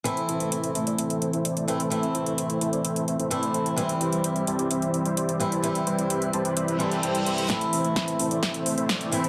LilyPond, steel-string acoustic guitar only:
\new Staff \with { instrumentName = "Steel-string acoustic guitar" } { \time 4/4 \key a \minor \tempo 4 = 129 <e a c' e'>2.~ <e a c' e'>8 <e a c' e'>16 r16 | <e a c' e'>2. <e a c' e'>4 | <e g c' e'>2.~ <e g c' e'>8 <e g c' e'>16 r16 | <e g c' e'>2~ <e g c' e'>8 <e g c' a'>4. |
<e a c' e'>2.~ <e a c' e'>8 <e a c' e'>16 r16 | }